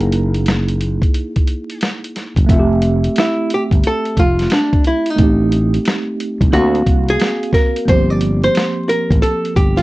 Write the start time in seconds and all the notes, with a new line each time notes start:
Already playing: F#1 A#3 D#4 E4 G#4 A#4
0.01 closed hi-hat
0.12 closed hi-hat
0.34 closed hi-hat
0.46 snare, closed hi-hat
0.68 closed hi-hat
0.81 closed hi-hat
1.02 kick, closed hi-hat
1.14 closed hi-hat
1.36 kick, closed hi-hat
1.47 closed hi-hat
1.70 closed hi-hat
1.81 snare, closed hi-hat
2.04 closed hi-hat
2.16 snare, closed hi-hat
2.36 F#1, kick, closed hi-hat
2.46 F1 A3 C4, kick, closed hi-hat
2.51 F4 E5
2.59 G4
2.82 closed hi-hat
3.04 closed hi-hat
3.16 E4, snare, closed hi-hat
3.50 G4, closed hi-hat
3.71 G1, kick, closed hi-hat
3.84 A4, closed hi-hat
4.05 closed hi-hat
4.17 F1 F4, kick, closed hi-hat
4.39 snare, closed hi-hat
4.50 D4, snare, closed hi-hat
4.73 kick, closed hi-hat
4.84 E4, closed hi-hat
5.06 closed hi-hat
5.10 D#4
5.16 A1 A3 C4, kick, closed hi-hat
5.20 D#4 G4
5.52 closed hi-hat
5.74 closed hi-hat
5.85 snare, closed hi-hat
6.20 closed hi-hat
6.41 C2, kick, closed hi-hat
6.51 D2 A#3 C4 F#4, closed hi-hat
6.55 F#4 F5
6.75 closed hi-hat
6.86 C2, kick, closed hi-hat
7.08 G#4, closed hi-hat
7.20 snare, closed hi-hat
7.43 closed hi-hat
7.53 A#4, kick, snare, closed hi-hat
7.76 closed hi-hat
7.85 G1 A#3 C4 C5, kick, closed hi-hat
7.90 F3 G4
8.10 D5
8.21 closed hi-hat
8.44 C5, closed hi-hat
8.55 snare, closed hi-hat
8.89 A#4, closed hi-hat
9.10 A1, kick, closed hi-hat
9.22 A4, closed hi-hat
9.45 closed hi-hat
9.56 G1 G4, kick, closed hi-hat
9.77 F4, closed hi-hat